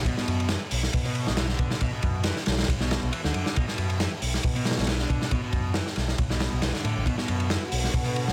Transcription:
0.05 B1 B2, kick, ride
0.17 B2, snare
0.28 F#2, ride
0.40 ride
0.49 E3, snare, ride
0.71 B1, open hi-hat
0.83 snare
0.93 B2, kick, ride
1.05 B2, ride
1.15 ride
1.27 B1, snare
1.37 E3, snare, ride
1.49 D3, snare
1.59 B2, kick, ride
1.71 snare
1.81 B1 B2, kick, ride
1.93 B2
2.03 F#2, kick, ride
2.24 E3, snare, ride
2.36 snare
2.46 B1, snare, ride
2.52 snare, ride
2.58 snare, ride
2.63 snare, ride
2.68 B1, kick, ride
2.80 B2, snare
2.91 snare, ride
3.03 B1
3.12 E3, ride
3.24 D2 D3, snare
3.34 F#2, ride
3.46 snare
3.56 B1 B2, kick, ride
3.68 B2, snare
3.78 F#2, ride
3.90 ride
3.99 E3, snare, ride
4.22 B1, open hi-hat
4.34 snare
4.43 B2, kick, ride
4.55 B2, ride
4.65 snare, ride
4.71 snare, ride
4.77 B1, snare, ride
4.82 snare, ride
4.87 E3, snare, ride
4.99 D3, snare
5.10 B2, kick, ride
5.22 snare
5.31 B1 B2, kick, ride
5.43 B2
5.53 F#2, kick, ride
5.74 E3, snare, ride
5.87 snare
5.96 B1, snare, ride
6.08 snare
6.18 B1, kick, ride
6.30 B2, snare
6.40 snare, ride
6.53 B1
6.62 B1 E3, snare, ride
6.74 D3, snare
6.84 A2, ride
6.97 A1
7.06 B1 B2 D3 B3 F#4, kick, ride
7.18 B2, snare
7.28 F#2, ride
7.40 ride
7.50 E3, snare, ride
7.72 B1, open hi-hat
7.84 snare
7.94 B2, kick, ride
8.05 B2, ride
8.16 ride
8.28 B1, snare

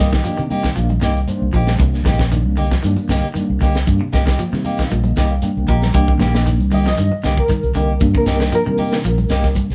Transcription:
Already playing: D#3 A#3 D#5
0.00 C2 A#3 D#4 G4, snare
0.13 D#3 D#4 G4, kick, snare, shekere
0.24 D#3 F3 A#3 D4 D#4 G4, closed hi-hat, shekere
0.37 C3 D#3, closed hi-hat
0.50 A#3 D#4 G4 G5, open hi-hat, high conga, low conga, shekere
0.63 D#3, kick, snare, shekere
0.76 A#1 D#3 F3 A#3 D4 F5, closed hi-hat, shekere
0.89 D#5, closed hi-hat, high conga
1.01 C2 D#3 A#3 D#4 G4, snare, closed hi-hat, low conga, shekere
1.16 shekere
1.27 D#3 A#3 D4 C5, closed hi-hat, high conga, shekere
1.42 C2
1.53 A#1 F3 A#3 D#4 G4, kick, open hi-hat, low conga, shekere
1.67 snare, closed hi-hat, high conga
1.79 C2 C3 D#3 A#3 D4, kick, closed hi-hat, low conga, shekere
1.94 snare, closed hi-hat
2.04 A#1 D#3 A#3 D#4 G4, kick, snare, closed hi-hat, high conga, shekere
2.19 kick, snare, shekere
2.32 D#3 A#3 D4, closed hi-hat, shekere
2.45 C2, high conga
2.57 D3 A#3 D#4 G4, open hi-hat, high conga, low conga, shekere
2.71 F3, kick, snare, shekere
2.83 G2 D#3 A#3 D4, closed hi-hat, shekere
2.97 closed hi-hat, high conga
3.09 C2 D3 A#3 D#4 G4, snare, closed hi-hat, low conga, shekere
3.23 closed hi-hat, shekere
3.34 D#3 A#3 D4, muted fingered electric bass stroke, closed hi-hat, high conga, shekere
3.50 C2
3.61 C2 D3 A#3 D#4 G4, kick, snare, open hi-hat, low conga, shekere
3.75 snare, closed hi-hat
3.87 G2 D#3 A#3 D4, kick, closed hi-hat, shekere
4.01 C3
4.13 C2 A#3 D#4 G4, kick, snare, closed hi-hat, high conga, shekere
4.26 D#3 D#4 G4, kick, snare, shekere
4.38 D#3 F3 A#3 C4, closed hi-hat, shekere
4.52 C3 D#3, snare, closed hi-hat, high conga
4.64 A#3 D#4 G4 F5, open hi-hat, high conga, low conga, shekere
4.78 D#3, kick, snare, shekere
4.90 A#1 D3 D#3 F3 A#3 D#5, closed hi-hat, high conga, shekere
5.04 closed hi-hat, high conga
5.16 C2 D#3 A#3 D#4 G4, kick, snare, closed hi-hat, low conga, shekere
5.30 F5, shekere
5.42 D#3 A#3 D4 G5, closed hi-hat, high conga, shekere
5.57 C2
5.67 A#1 F3 A#3 D#4 G4 A#5, kick, closed hi-hat, low conga, shekere
5.82 snare, closed hi-hat, high conga
5.94 C2 C3 D#3 A#3 D4 D#4 G4, kick, closed hi-hat, low conga, shekere
6.08 kick
6.19 A#1 D#3 A#3 G4, muted clean electric guitar stroke, snare, closed hi-hat, high conga, shekere
6.34 D#4 G4, snare, closed hi-hat, shekere
6.46 D#3, closed hi-hat, shekere
6.60 C2, closed hi-hat, high conga
6.71 D3 A#3 D#4 G4 D#5, open hi-hat, high conga, low conga, shekere
6.85 F3 D#5, snare, closed hi-hat, shekere
6.97 G2 D#3, closed hi-hat, high conga, shekere
7.11 high conga
7.23 C2 D3 A#3 G4, snare, closed hi-hat, shekere
7.37 A#4, kick, shekere
7.48 D#3, muted fingered electric bass stroke, kick, closed hi-hat, high conga, shekere
7.63 C2, closed hi-hat
7.74 C2 D3 A#3 D#4 G4, closed hi-hat, low conga, shekere
8.00 G2 D#3 A#3 D4, kick, closed hi-hat, low conga, shekere
8.14 C3 A#4, kick, closed hi-hat
8.26 C2 D#4 G4, snare, closed hi-hat, high conga, shekere
8.40 D#3 D#4 G4, snare, closed hi-hat, shekere
8.52 F3 A#4, closed hi-hat, shekere
8.66 C3 D#3, high conga
8.78 A#3 D#4 G4, open hi-hat, high conga, low conga, shekere
8.92 D#3, snare, shekere
9.04 A#1 F3, closed hi-hat, shekere
9.18 closed hi-hat, high conga
9.29 C2 A#3 D#4 G4, muted clean electric guitar stroke, snare, closed hi-hat, low conga, shekere
9.43 kick, snare, shekere
9.55 kick, closed hi-hat, high conga, shekere
9.70 C2, snare, closed hi-hat

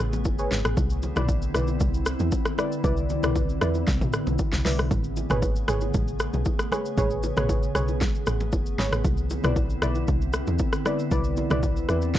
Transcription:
Already playing: C#3 A3 B3 G#4
0.00 A1
0.13 low bongo, shaker
0.25 F#1, kick, high bongo, shaker
0.39 G#4 B4 C#5, shaker
0.51 G#1, snare, low conga, shaker
0.65 A1, cross-stick, shaker
0.77 C2 D3 C4 E4, kick, low conga, shaker
0.90 shaker
1.02 high bongo, low bongo, shaker
1.16 B1 E4 B4 D5, cross-stick, mid tom, shaker
1.29 kick, high bongo, shaker
1.42 shaker
1.54 B1 E4 B4 D5, cross-stick, shaker
1.67 high bongo, shaker
1.80 C2, kick, low conga, shaker
1.94 shaker
2.06 cross-stick, shaker
2.20 E2, low bongo, shaker
2.32 kick, high bongo, shaker
2.45 cross-stick, shaker
2.58 E4 B4 D5, cross-stick, low conga, shaker
2.72 shaker
2.84 C2 E4 B4 D5, kick, low conga, shaker
2.97 shaker
3.09 high bongo, low bongo, shaker
3.23 C2 E4 B4 D5, cross-stick, mid tom, shaker
3.36 kick, high bongo, shaker
3.49 shaker
3.61 E2 E4 B4 D5, cross-stick, shaker
3.74 high bongo, shaker
3.87 C2, kick, snare, low conga, shaker
4.01 A1, mid tom, shaker
4.13 cross-stick, shaker
4.27 B1, low bongo, shaker
4.39 kick, high bongo, shaker
4.52 C2, snare, shaker
4.65 C2 E4 B4 D5, snare, open hi-hat, low conga, shaker
4.79 B1, cross-stick, shaker
4.91 A1 C#3 A3 B3 G#4, kick, low conga, shaker
5.04 shaker
5.16 high bongo, low bongo, shaker
5.30 G#1 G#4 B4 C#5, cross-stick, mid tom, shaker
5.42 kick, high bongo, shaker
5.56 shaker
5.68 G#1 G#4 B4 C#5, cross-stick, shaker
5.81 high bongo, shaker
5.94 A1, kick, low conga, shaker
6.08 shaker
6.19 cross-stick, shaker
6.33 B1, low bongo, shaker
6.45 kick, high bongo, shaker
6.59 cross-stick, shaker
6.71 G#4 B4 C#5, cross-stick, low conga, shaker
6.86 shaker
6.97 A1 G#4 B4 C#5, kick, low conga, shaker
7.10 shaker
7.23 high bongo, low bongo, shaker
7.37 A1 G#4 B4 C#5, cross-stick, mid tom, shaker
7.49 kick, high bongo, shaker
7.63 shaker
7.75 B1 G#4 B4 C#5, cross-stick, shaker
7.88 high bongo, shaker
8.01 kick, snare, low conga, shaker
8.15 shaker
8.26 A1, cross-stick, shaker
8.40 low bongo, shaker
8.52 F#1, kick, high bongo, shaker
8.66 shaker
8.78 G#1 G#4 B4 C#5, snare, low conga, shaker
8.92 A1, cross-stick, shaker
9.04 C2 D3 C4 E4, kick, low conga, shaker
9.17 shaker
9.30 high bongo, low bongo, shaker
9.44 B1 E4 B4 D5, cross-stick, mid tom, shaker
9.56 kick, high bongo, shaker
9.70 shaker
9.82 B1 E4 B4 D5, cross-stick, shaker
9.95 high bongo, shaker
10.08 C2, kick, low conga, shaker
10.22 shaker
10.33 cross-stick, shaker
10.47 E2, low bongo, shaker
10.59 kick, high bongo, shaker
10.73 cross-stick, shaker
10.85 E4 B4 D5, cross-stick, low conga, shaker
10.99 shaker
11.11 C2 E4 B4 D5, kick, low conga, shaker
11.24 shaker
11.37 high bongo, low bongo, shaker
11.50 C2 E4 B4 D5, cross-stick, mid tom, shaker
11.63 kick, high bongo, shaker
11.77 shaker
11.89 E2 E4 B4 D5, cross-stick, shaker
12.02 high bongo, shaker
12.14 kick, snare, low conga, shaker

